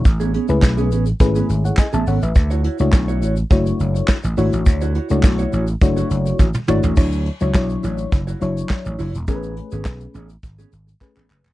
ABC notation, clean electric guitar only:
X:1
M:4/4
L:1/16
Q:1/4=104
K:Dlyd
V:1 name="Clean electric guitar"
z [B,CG] [B,CG] z2 [B,CG] [B,CG] z2 [B,CG] z3 [B,CG] [B,CA] z | z [EFc] [EFc] z2 [EFc] [EFc] z6 z [EFc] z | z [EFc] [EFc] z2 [EFc] [EFc] z2 [EFc] z4 [EFd] [EFc] | [EFc]2 z [EFc] z2 [EFc] z2 [EFc] z4 [EFc] z |
[B,CG]2 z [B,CG] z2 [B,CG] z2 [B,CG] z3 [B,CG] z2 |]